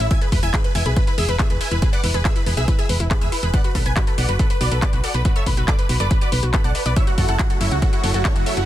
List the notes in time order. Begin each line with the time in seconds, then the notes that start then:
0.00 A1 E4 E5, closed hi-hat
0.11 E4 E5 G#5 G#6, kick, closed hi-hat
0.21 G#4 B4 B5, closed hi-hat
0.32 E1 B4 B5, kick, open hi-hat
0.43 E1 E4 E5 G#5 G#6, closed hi-hat
0.54 G#4 B4 B5, kick, clap, closed hi-hat
0.64 B4 B5, closed hi-hat
0.75 E1 E4 E5 G#5 G#6, open hi-hat
0.86 B1 G#4 B4 B5, closed hi-hat
0.96 B4 B5, kick, closed hi-hat
1.07 E4 B4 B5, closed hi-hat
1.18 E1 G#4 E5 E6, open hi-hat
1.29 E1 B4 B5, closed hi-hat
1.39 E4 G#4 E5 E6, kick, clap, closed hi-hat
1.50 E1 G#4 B4 B5, closed hi-hat
1.61 B4 E5 G#5 G#6, open hi-hat
1.71 E1 E4 B4 B5, closed hi-hat
1.82 G#4 B4 B5, kick, closed hi-hat
1.93 B4 D5 F#5 F#6, closed hi-hat
2.04 E1 E4 B4 B5, open hi-hat
2.14 E1 G#4 B4 B5, closed hi-hat
2.25 G#4 B4 E5 E6, kick, clap, closed hi-hat
2.36 E4 B4 B5, closed hi-hat
2.46 E1 G#4 B4 B5, open hi-hat
2.57 B1 G#4 B4 E5 E6, closed hi-hat
2.68 E4 B4 B5, kick, closed hi-hat
2.78 G#4 E5 E6, closed hi-hat
2.89 E1 B4 B5, open hi-hat
3.00 E1 E4, closed hi-hat
3.11 G#4 B4 B5, kick, clap, closed hi-hat
3.21 E1 G#4 B4 E5 E6, closed hi-hat
3.32 E4 B4 B5, open hi-hat
3.43 E1 G#4 B4 B5, closed hi-hat
3.53 B4 D5 F#5 F#6, kick, closed hi-hat
3.64 F#4 B4 B5, closed hi-hat
3.75 B1 A4 B4 B5, kick, open hi-hat
3.86 B1 B4 G#5 G#6, closed hi-hat
3.96 F#4 B4 B5, kick, clap, closed hi-hat
4.07 A4 B4 B5, closed hi-hat
4.18 B1 B4 D5 F#5 F#6, open hi-hat
4.29 F#1 F#4 B4 B5, closed hi-hat
4.39 A4 B4 B5, kick, closed hi-hat
4.50 B4 B5, closed hi-hat
4.61 B1 F#4 B4 D5 D6, open hi-hat
4.71 B1 A4 B4 B5, closed hi-hat
4.82 B4 D5 D6, kick, clap, closed hi-hat
4.93 B1 F#4 B4 B5, closed hi-hat
5.04 A4 D5 F#5 F#6, open hi-hat
5.14 B1 B4 B5, closed hi-hat
5.25 F#4 B4 B5, kick, closed hi-hat
5.36 A4 C#5 E5 E6, closed hi-hat
5.46 B1 B4 B5, kick, open hi-hat
5.57 B1 F#4 B4 B5, closed hi-hat
5.68 A4 B4 D5 D6, kick, clap, closed hi-hat
5.79 B4 B5, closed hi-hat
5.89 B1 F#4 B4 B5, open hi-hat
6.00 F#1 A4 B4 D5 D6, closed hi-hat
6.11 B4 B5, kick, closed hi-hat
6.21 F#4 B4 D5 D6, closed hi-hat
6.32 B1 B4 B5, open hi-hat
6.43 B1 F#4, closed hi-hat
6.54 A4 B4 B5, kick, clap, closed hi-hat
6.64 B1 D5 F#5 A5 F#6, closed hi-hat
6.75 B4 D5 B5, open hi-hat
6.86 B1 B4 D5 B5, closed hi-hat
6.96 C#3 F#3 A3 E4 F#4 C#5 E5 E6, kick, closed hi-hat
7.07 F#4 F#5, closed hi-hat
7.18 F#1 F#4 A4 F#5, kick, open hi-hat
7.29 F#1 E4 A4 F#5 F#6, closed hi-hat
7.39 F#4 F#5, kick, clap, closed hi-hat
7.50 F#4 A4 F#5, closed hi-hat
7.61 F#1 E4 C#5 E5 E6, open hi-hat
7.71 C#2 F#4 F#5, closed hi-hat
7.82 F#4 A4 F#5, kick, closed hi-hat
7.93 E4 F#4 F#5, closed hi-hat
8.03 F#1 F#4 A4 C#5 C#6, open hi-hat
8.14 F#1 F#4 A4 F#5, closed hi-hat
8.25 E4 A4 C#5 C#6, kick, clap, closed hi-hat
8.36 F#1 F#4 F#5, closed hi-hat
8.46 A4 C#5 E5 E6, open hi-hat
8.57 F#1 E4 F#4 F#5, closed hi-hat